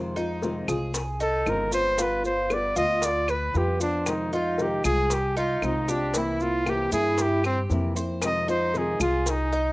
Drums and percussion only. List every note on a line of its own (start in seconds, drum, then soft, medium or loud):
0.16 high bongo soft
0.16 maracas soft
0.42 high bongo medium
0.42 maracas soft
0.68 claves medium
0.68 maracas medium
0.94 high bongo medium
0.94 maracas medium
1.20 high bongo soft
1.20 maracas soft
1.46 high bongo soft
1.46 low bongo medium
1.46 claves medium
1.46 maracas soft
1.72 high bongo soft
1.72 maracas medium
1.98 high bongo medium
1.98 maracas loud
2.24 high bongo soft
2.24 maracas soft
2.50 high bongo medium
2.50 claves medium
2.50 maracas soft
2.76 maracas medium
3.02 high bongo medium
3.02 maracas medium
3.28 high bongo soft
3.28 claves medium
3.28 maracas soft
3.54 high bongo soft
3.54 low bongo medium
3.54 maracas soft
3.80 high bongo soft
3.80 maracas medium
4.06 high bongo medium
4.06 claves medium
4.06 maracas medium
4.32 high bongo soft
4.32 maracas soft
4.58 high bongo medium
4.58 maracas soft
4.84 claves medium
4.84 maracas medium
5.10 high bongo medium
5.10 maracas medium
5.36 high bongo soft
5.36 maracas soft
5.62 high bongo soft
5.62 low bongo medium
5.62 claves medium
5.62 maracas soft
5.88 high bongo soft
5.88 maracas medium
6.14 high bongo medium
6.14 maracas medium
6.40 high bongo soft
6.40 maracas soft
6.66 high bongo medium
6.66 claves medium
6.66 maracas soft
6.92 maracas medium
7.18 high bongo medium
7.18 maracas medium
7.44 high bongo soft
7.44 claves medium
7.44 maracas soft
7.70 high bongo soft
7.70 low bongo medium
7.70 maracas soft
7.96 high bongo soft
7.96 maracas medium
8.22 high bongo medium
8.22 claves medium
8.22 maracas medium
8.48 high bongo soft
8.48 maracas soft
8.74 high bongo medium
8.74 maracas soft
9.00 claves medium
9.00 maracas medium
9.26 high bongo medium
9.26 maracas medium
9.52 high bongo soft
9.52 maracas soft